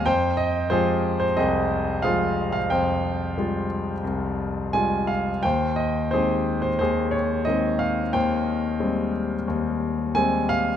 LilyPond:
<<
  \new Staff \with { instrumentName = "Grand piano" } { \time 4/4 \key aes \major \tempo 4 = 90 << { g''8 ees''8 c''8. c''16 ees''4 f''8. f''16 | g''4. r4. aes''8 f''8 | g''8 ees''8 c''8. c''16 c''8 des''8 ees''8 f''8 | g''4. r4. aes''8 f''8 | } \\ { c''4 <g' aes'>4 <g' aes'>4 <aes' c''>4 | c''2 r2 | c''4 <g' aes'>4 <g' aes'>2 | c''2 r2 | } >> }
  \new Staff \with { instrumentName = "Grand piano" } { \clef bass \time 4/4 \key aes \major f,4 <f aes f'>4 c,4 <f aes f'>4 | f,4 <g aes f'>4 c,4 <g aes f'>4 | ees,4 <ees aes c'>4 ees,4 <ees aes c'>4 | ees,4 <g aes c'>4 ees,4 <g aes c'>4 | }
>>